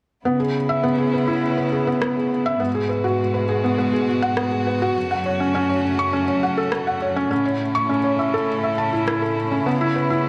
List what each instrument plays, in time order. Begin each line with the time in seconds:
0.25 cello section C#3, string quartet C#3 B3 E4, felt piano B3
0.40 felt piano G#4
0.69 felt piano E5
0.83 felt piano B3
0.98 felt piano G#4
1.14 felt piano B4
1.28 felt piano E4
1.58 felt piano B4
1.72 felt piano G#4
1.87 felt piano B3
2.02 felt piano B3, cross-stick
2.17 felt piano G#4
2.46 felt piano E5
2.60 cello section G#2, string quartet B2 G#3 F#4, felt piano B3
2.75 felt piano G#4
2.89 felt piano B4
3.04 felt piano F#4
3.34 felt piano B4
3.49 felt piano G#4
3.64 felt piano B3
3.78 felt piano B3
3.93 felt piano G#4
4.22 felt piano F#5
4.37 felt piano B3, cross-stick
4.52 felt piano G#4
4.67 felt piano B4
4.82 felt piano F#4
4.96 cello section F#2, string quartet C#3 A3
5.11 felt piano F#5
5.26 felt piano C#5
5.40 felt piano C#4
5.55 felt piano C#4
5.69 felt piano C#5
5.99 felt piano C#6
6.13 felt piano C#4
6.28 felt piano C#5
6.43 felt piano F#5
6.58 felt piano A4
6.72 cross-stick
6.87 felt piano F#5
7.02 felt piano C#5
7.16 felt piano C#4
7.30 cello section A2, string quartet C#3 A3 E4, felt piano C#4
7.46 felt piano C#5
7.75 felt piano C#6
7.89 felt piano C#4
8.04 felt piano C#5
8.19 felt piano E5
8.34 felt piano A4
8.64 felt piano E5
8.78 felt piano A5
8.93 felt piano E4
9.08 felt piano E4, cross-stick
9.22 felt piano A4
9.51 felt piano C#4
9.66 cello section C#3, felt piano B3, string quartet B3
9.81 felt piano E4
9.96 felt piano B4
10.10 felt piano E4